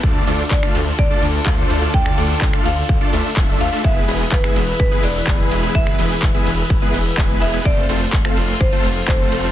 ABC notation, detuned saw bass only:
X:1
M:4/4
L:1/8
Q:1/4=126
K:Ddor
V:1 name="Detuned saw bass" clef=bass
D,, D,, D,, D,, D,, D,, D,, D,, | D,, D,, D,, D,, D,, D,, D,,, D,, | E,,, E,,, E,,, E,,, E,,, E,,, E,,, E,,, | E,,, E,,, E,,, E,,, E,,, E,,, E,,, E,,, |
F,,, F,,, F,,, F,,, F,,, F,,, F,,, F,,, |]